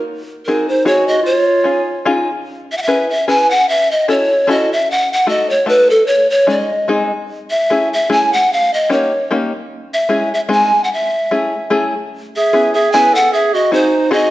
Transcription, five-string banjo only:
0.48 C4 D#4 F#4 G#4
0.85 C4 D#4 F#4 G#4
1.64 C#4 D#4 F4 G#4
2.05 C#4 D#4 F4 G#4
2.88 C#4 E4 G#4 B4
3.28 C#4 E4 G#4 B4
4.08 C#4 E4 F#4 A4
4.47 C#4 E4 F#4 A4
5.27 A3 D#4 F#4 A4
5.66 A3 D#4 F#4 A4
6.47 G#3 C#4 D#4 G#4
6.88 G#3 C4 D#4 G#4
7.70 A3 C#4 E4 G#4
8.10 A3 C#4 E4 G#4
8.89 A#3 C#4 D#4 G4
9.31 A#3 C#4 D#4 G4
10.09 G#3 C#4 E4 G#4
10.49 G#3 C4 D#4 G#4
11.31 A3 C#4 E4 G#4
11.70 A3 C#4 E4 G#4
12.53 B3 C#4 E4 G#4
12.94 B3 C#4 E4 G#4
13.71 C4 D#4 F#4 G#4
14.11 C4 D#4 F#4 G#4

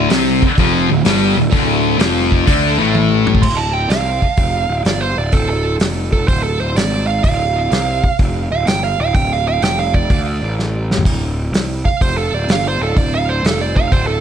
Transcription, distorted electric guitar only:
Already playing: D3
0.10 C3 C4
0.43 muted distorted electric guitar stroke
0.59 F2 F3
0.90 D2
1.05 G2 G3
1.37 D2
1.51 D2 D3
1.98 F2 F3
2.46 D3 D4
2.78 A2 A3

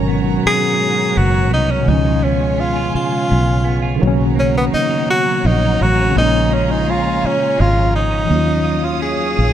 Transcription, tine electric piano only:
Already playing: B2 D#3 F#3 C#4 A#4
1.81 B2 D#3
1.87 F3 G#3
1.93 C#4
3.96 C#3 D#3
4.02 F#3 A#3
4.07 C#4
6.10 C#3 F3
6.15 G#3 A#3
6.21 C#4
8.24 D#3 F#3
8.30 A#3 C#4
8.36 F4

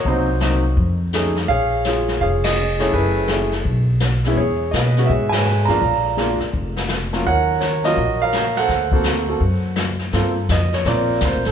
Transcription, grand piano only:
0.06 F#3 A#3 C4 D#4 F#4 C5
0.41 F#3 A#3 C4 D#4
1.14 A3 C#4 D#4 G#4
1.48 G#4 C#5 F5
1.85 F4 G#4 C#5
2.21 G#4 C#5 F5
2.44 G#4 D#5
2.80 A3 C#4 E4 G#4 C#5
2.94 E4 G#4 B4
3.30 A3 C#4 E4 G#4
4.27 G#3 B3 C#4 E4
4.37 G#4 C#5
4.71 G#4 B4 D#5
4.98 G#3 B3 C#4 F#4
5.06 C#5 E5
5.10 G#4
5.29 G#5
5.34 B4 C#5
5.65 G#3 A#3 D4 F4 A#5
5.70 D5 F5
6.17 G#3 A#3 D4 F4
7.13 F#3 A#3 C#4 F4
7.27 A#4 C#5 F#5
7.61 C#5
7.84 F#3 A#3 C#4 F4 F#4 A#4 D#5
8.22 A#4 C#5 F5
8.57 A4 C5 F#5
8.93 A#3 C4 F#4 A4
9.29 A#3 C4 F#4 A4
10.13 A#3 C4 F4 A4
10.52 D#5
10.74 C#5
10.86 A#3 C4 F4 A#4 D5
11.25 C5
11.47 A4

